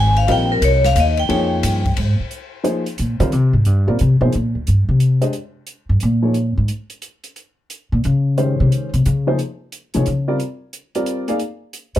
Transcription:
0.00 0.26 G#1 medium
0.00 0.17 G#5 loud
0.17 0.28 F5 loud
0.17 ride soft
0.27 0.60 A#1 medium
0.27 0.79 G3 medium
0.27 0.79 C4 medium
0.27 0.79 F4 medium
0.27 0.79 A#4 medium
0.27 0.80 D#5 medium
0.27 ride medium
0.32 0.51 G5 loud
0.52 0.62 A#4 medium
0.61 0.94 C2 medium
0.61 0.84 C#5 medium
0.61 hi-hat pedal medium
0.61 ride medium
0.84 0.96 F5 loud
0.84 snare soft
0.84 ride medium
0.95 1.28 D#2 loud
0.95 hi-hat pedal medium
0.95 ride medium
1.00 1.19 D#5 medium
1.17 1.94 G5 loud
1.17 ride soft
1.29 1.62 F2 medium
1.29 1.80 F3 medium
1.29 1.80 A#3 medium
1.29 1.80 D#4 medium
1.29 1.80 G#4 medium
1.29 1.80 C#5 medium
1.29 ride medium
1.63 1.96 G2 medium
1.63 hi-hat pedal medium
1.63 ride medium
1.85 kick medium
1.85 ride soft
1.97 2.17 G#2 medium
1.97 ride medium
2.20 muted upright bass stroke soft
2.31 closed hi-hat soft
2.64 2.84 F3 medium
2.64 2.84 A#3 soft
2.64 2.84 D#4 soft
2.64 2.84 G#4 medium
2.64 2.84 C5 medium
2.64 closed hi-hat medium
2.86 closed hi-hat soft
2.98 3.19 A#2 medium
2.98 closed hi-hat soft
3.20 3.33 D3 loud
3.20 3.31 G3 medium
3.20 3.31 C4 medium
3.20 3.31 F4 medium
3.20 3.31 A#4 medium
3.20 3.31 C5 medium
3.20 closed hi-hat soft
3.32 3.53 C3 medium
3.32 closed hi-hat soft
3.53 3.66 G#2 medium
3.65 3.87 G2 medium
3.65 closed hi-hat soft
3.87 3.99 A#2 medium
3.87 3.98 G3 medium
3.87 3.98 C4 medium
3.87 3.98 F4 soft
3.87 3.98 A#4 medium
3.87 3.98 D5 medium
3.99 4.20 C3 medium
3.99 closed hi-hat soft
4.21 4.32 B2 medium
4.21 4.32 F3 medium
4.21 4.32 A#3 medium
4.21 4.32 D#4 medium
4.21 4.32 G#4 medium
4.21 4.32 C5 medium
4.32 4.54 A#2 medium
4.32 closed hi-hat soft
4.55 4.66 D2 soft
4.67 4.88 G2 medium
4.67 closed hi-hat soft
4.89 5.20 C3 medium
5.00 closed hi-hat medium
5.21 5.33 G#3 medium
5.21 5.33 D4 medium
5.21 5.33 G4 medium
5.21 5.33 C5 medium
5.21 5.33 D#5 medium
5.21 closed hi-hat soft
5.33 closed hi-hat soft
5.67 closed hi-hat soft
5.89 6.01 G2 medium
6.00 6.54 A#2 medium
6.00 closed hi-hat medium
6.22 6.34 F3 medium
6.22 6.34 A#3 soft
6.22 6.34 D#4 soft
6.22 6.34 G#4 soft
6.22 6.34 C#5 medium
6.34 closed hi-hat soft
6.58 6.69 G#2 medium
6.68 closed hi-hat soft
6.90 closed hi-hat soft
7.02 closed hi-hat soft
7.24 closed hi-hat soft
7.36 closed hi-hat soft
7.70 closed hi-hat medium
7.92 8.04 A#2 medium
8.04 8.56 C#3 loud
8.04 closed hi-hat soft
8.37 8.88 D#3 medium
8.37 8.88 G#3 soft
8.37 8.89 C#4 medium
8.37 8.89 G4 medium
8.37 8.89 C5 medium
8.37 closed hi-hat soft
8.60 8.67 C3 medium
8.72 closed hi-hat soft
8.94 9.05 C3 medium
8.94 closed hi-hat soft
9.06 9.37 C#3 loud
9.06 closed hi-hat medium
9.27 9.37 F3 medium
9.27 9.38 A#3 medium
9.27 9.37 D#4 medium
9.27 9.38 G#4 medium
9.27 9.38 C5 medium
9.39 closed hi-hat soft
9.72 closed hi-hat medium
9.94 10.06 C3 medium
9.94 10.05 F3 medium
9.94 10.05 A#3 medium
9.94 10.05 D#4 medium
9.94 10.05 G#4 medium
9.94 10.05 C#5 medium
9.94 closed hi-hat soft
10.06 10.38 C#3 medium
10.06 closed hi-hat soft
10.28 10.38 G3 medium
10.28 10.38 C4 medium
10.28 10.38 F4 medium
10.28 10.38 A#4 medium
10.28 10.38 D5 medium
10.40 closed hi-hat soft
10.73 closed hi-hat soft
10.95 11.26 G3 medium
10.95 11.26 C4 medium
10.95 11.26 F4 medium
10.95 11.26 A#4 medium
10.95 11.26 D5 medium
10.95 closed hi-hat soft
11.06 closed hi-hat medium
11.28 11.39 A#3 medium
11.28 11.39 D#4 medium
11.28 11.39 G#4 medium
11.28 11.39 D5 medium
11.28 11.39 F5 medium
11.28 closed hi-hat soft
11.39 closed hi-hat soft
11.73 closed hi-hat medium
11.95 11.99 D3 medium
11.95 11.99 G#3 medium
11.95 11.99 G4 medium
11.95 11.99 C5 medium
11.95 11.99 D#5 medium
11.95 closed hi-hat soft

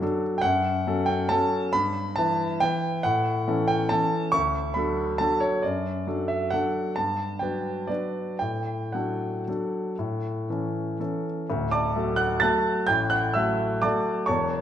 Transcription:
0.00 0.40 F#3 soft
0.00 0.40 D4 soft
0.00 0.41 A4 soft
0.00 0.22 D5 medium
0.38 1.07 F#5 medium
0.38 0.44 G5 medium
0.44 0.86 F#2 medium
0.87 1.27 F#3 soft
0.87 1.27 C#4 soft
0.87 1.27 A4 soft
1.06 1.29 G5 medium
1.29 1.70 F#3 soft
1.29 1.70 C#4 soft
1.29 1.70 A4 medium
1.29 1.73 A5 loud
1.73 2.16 G2 medium
1.73 2.16 B5 loud
2.16 2.58 E3 soft
2.16 2.58 E4 soft
2.16 2.58 B4 soft
2.16 2.61 A5 medium
2.60 3.01 E3 soft
2.60 3.01 E4 soft
2.60 3.01 B4 soft
2.60 3.04 G5 loud
3.03 3.46 A2 medium
3.03 3.68 F#5 medium
3.48 3.87 E3 soft
3.48 3.87 C#4 soft
3.48 3.88 A4 soft
3.68 3.90 G5 medium
3.89 4.30 E3 soft
3.89 4.30 C#4 soft
3.89 4.31 A4 soft
3.89 4.33 A5 medium
4.32 4.76 D2 medium
4.32 4.76 C#6 loud
4.74 5.16 F#3 soft
4.74 5.16 D4 soft
4.74 5.17 A4 soft
4.74 5.19 B5 medium
5.18 5.60 F#3 soft
5.18 5.61 D4 soft
5.18 5.61 A4 soft
5.18 5.42 A5 medium
5.40 5.63 C#5 medium
5.63 6.06 F#2 medium
5.63 6.28 D5 medium
6.07 6.48 F#3 soft
6.07 6.48 D4 soft
6.07 6.49 A4 soft
6.28 6.52 E5 medium
6.50 6.93 F#3 soft
6.50 6.93 D4 soft
6.50 6.94 A4 soft
6.50 6.96 F#5 medium
6.96 7.40 G2 soft
6.96 7.40 A5 medium
7.39 7.86 F#3 soft
7.39 7.86 D4 soft
7.39 7.86 B4 soft
7.39 7.88 G5 medium
7.87 8.36 F#3 soft
7.87 8.37 D4 soft
7.87 8.37 B4 soft
7.87 8.39 D5 medium
8.39 8.93 A2 soft
8.39 8.94 G5 medium
8.92 9.43 F#3 soft
8.92 9.44 D4 soft
8.92 9.44 A4 soft
8.92 11.24 F#5 medium
9.48 9.94 F#3 soft
9.48 9.95 D4 soft
9.48 9.95 A4 soft
9.99 10.47 A2 soft
10.50 10.96 E3 soft
10.50 10.96 C#4 soft
10.50 10.97 A4 soft
11.00 11.46 E3 soft
11.00 11.46 C#4 soft
11.00 11.46 A4 soft
11.50 11.95 D1 soft
11.50 11.95 D2 medium
11.71 12.16 D5 medium
11.71 12.16 A5 medium
11.71 12.19 D6 medium
11.96 12.39 F#3 soft
11.96 12.39 A3 soft
11.96 12.39 A4 soft
12.16 12.40 F#5 medium
12.16 12.40 F#6 medium
12.40 12.85 F#3 soft
12.40 12.86 A3 soft
12.40 12.86 A4 soft
12.40 12.86 A5 medium
12.40 12.86 F#6 medium
12.40 12.88 A6 medium
12.87 13.35 A1 soft
12.87 13.35 A2 medium
12.87 13.10 G5 medium
12.87 13.11 G6 medium
13.10 13.34 F#5 medium
13.10 13.35 F#6 medium
13.34 13.80 F#3 soft
13.34 13.80 A3 soft
13.34 13.80 A4 soft
13.34 13.80 E5 medium
13.34 13.82 E6 medium
13.82 14.25 F#3 soft
13.82 14.26 A3 soft
13.82 14.26 A4 soft
13.82 14.25 D5 medium
13.82 14.25 A5 medium
13.82 14.28 D6 medium
14.26 14.61 E1 medium
14.26 14.61 E2 medium
14.26 14.61 C#5 medium
14.26 14.61 A5 medium
14.26 14.61 C#6 medium

